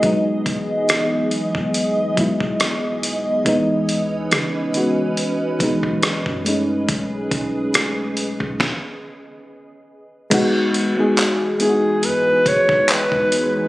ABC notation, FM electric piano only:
X:1
M:4/4
L:1/16
Q:"Swing 16ths" 1/4=70
K:E
V:1 name="FM electric piano"
[F,G,B,D]4- [F,G,B,D] z4 z [F,G,B,E]4 z2 | [E,G,B,D]4 z2 [E,G,B,F]2 z2 [E,G,B,D]4 [G,A,CD]2- | [G,A,CD]4 z12 | [G,B,DF]2 z [G,B,DG]2 z [G,B,DEF]4- [G,B,DEF] z4 z |]